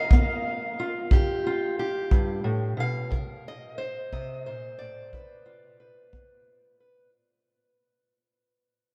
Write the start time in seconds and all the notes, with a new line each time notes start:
Already playing: F5
0.11 B3, kick
0.80 F4
1.11 G2 G4, kick
1.47 F4
1.79 G4
2.11 G2, kick
2.44 A2
2.77 B2 F5
3.11 C3 A#4, kick
3.48 D#5
3.78 C5
4.13 C3 D#5, kick
4.46 A#2 C5
4.79 A2 D5
5.13 G2 B4, kick
5.46 F4
5.80 B4
6.13 B3, kick
6.80 B4